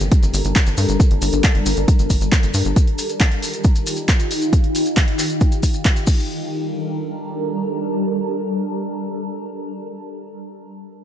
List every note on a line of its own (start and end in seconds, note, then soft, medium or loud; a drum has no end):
0.00 0.09 G1 medium
0.00 2.73 G3 medium
0.00 2.73 D4 medium
0.00 2.73 A4 medium
0.00 2.73 A#4 medium
0.00 closed hi-hat medium
0.00 maracas soft
0.12 kick loud
0.12 closed hi-hat medium
0.12 maracas soft
0.23 0.31 G1 medium
0.23 closed hi-hat medium
0.23 maracas soft
0.34 0.42 G1 loud
0.34 open hi-hat loud
0.34 maracas medium
0.45 0.53 G1 medium
0.45 closed hi-hat medium
0.45 maracas soft
0.56 kick loud
0.56 clap loud
0.56 closed hi-hat medium
0.56 maracas soft
0.67 0.75 G1 medium
0.67 closed hi-hat medium
0.67 maracas soft
0.77 0.86 G2 loud
0.77 open hi-hat medium
0.77 maracas medium
0.89 0.97 G1 medium
0.89 closed hi-hat medium
0.89 maracas soft
1.00 kick loud
1.00 closed hi-hat medium
1.00 maracas medium
1.11 1.19 G1 medium
1.11 closed hi-hat soft
1.22 1.30 G1 loud
1.22 open hi-hat loud
1.22 maracas medium
1.33 1.42 G1 medium
1.33 closed hi-hat medium
1.33 maracas soft
1.44 kick loud
1.44 clap loud
1.44 closed hi-hat medium
1.44 maracas medium
1.55 1.64 G1 medium
1.55 closed hi-hat medium
1.66 1.75 G1 loud
1.66 open hi-hat medium
1.66 maracas loud
1.77 1.86 G1 medium
1.77 closed hi-hat medium
1.77 maracas soft
1.88 kick loud
1.88 closed hi-hat medium
1.88 maracas medium
1.99 2.08 G1 medium
1.99 closed hi-hat medium
1.99 maracas soft
2.10 2.19 G1 loud
2.10 kick medium
2.10 open hi-hat loud
2.10 maracas medium
2.21 2.30 G1 medium
2.21 closed hi-hat medium
2.21 maracas soft
2.32 kick loud
2.32 clap loud
2.32 closed hi-hat medium
2.32 maracas medium
2.43 2.52 G1 medium
2.43 closed hi-hat soft
2.43 maracas soft
2.54 2.63 G2 loud
2.54 open hi-hat medium
2.54 maracas medium
2.65 2.74 G1 medium
2.65 closed hi-hat medium
2.65 maracas soft
2.76 6.04 D#3 medium
2.76 6.04 D#4 medium
2.76 6.04 F4 medium
2.76 6.04 G4 medium
2.76 kick loud
2.76 closed hi-hat medium
2.76 maracas medium
2.87 closed hi-hat soft
2.98 open hi-hat loud
2.98 maracas medium
3.09 closed hi-hat soft
3.09 maracas soft
3.20 kick loud
3.20 clap loud
3.20 closed hi-hat medium
3.20 maracas medium
3.31 closed hi-hat medium
3.42 open hi-hat medium
3.42 maracas medium
3.54 closed hi-hat soft
3.54 maracas soft
3.64 kick loud
3.64 closed hi-hat medium
3.64 maracas medium
3.76 closed hi-hat soft
3.76 maracas soft
3.87 open hi-hat loud
3.87 maracas loud
3.96 closed hi-hat soft
3.96 maracas soft
4.09 kick loud
4.09 clap loud
4.09 closed hi-hat medium
4.09 maracas soft
4.20 closed hi-hat soft
4.20 maracas soft
4.31 open hi-hat medium
4.31 maracas medium
4.42 closed hi-hat soft
4.42 maracas soft
4.53 kick loud
4.53 closed hi-hat medium
4.53 maracas soft
4.64 closed hi-hat soft
4.75 open hi-hat loud
4.75 maracas medium
4.86 closed hi-hat soft
4.86 maracas soft
4.96 kick loud
4.96 clap loud
4.96 closed hi-hat medium
4.96 maracas medium
5.08 closed hi-hat soft
5.19 clap soft
5.19 open hi-hat medium
5.19 maracas medium
5.30 closed hi-hat soft
5.30 maracas soft
5.41 kick loud
5.41 closed hi-hat medium
5.41 maracas soft
5.52 closed hi-hat soft
5.52 maracas soft
5.63 kick medium
5.63 open hi-hat loud
5.63 maracas medium
5.74 closed hi-hat soft
5.74 maracas soft
5.85 kick loud
5.85 clap loud
5.85 closed hi-hat medium
5.85 maracas soft
5.96 closed hi-hat soft
5.96 maracas soft
6.07 10.31 G3 medium
6.07 10.31 D4 medium
6.07 10.31 A4 medium
6.07 10.31 A#4 medium
6.07 kick loud
6.07 crash medium
6.07 maracas medium
6.20 maracas soft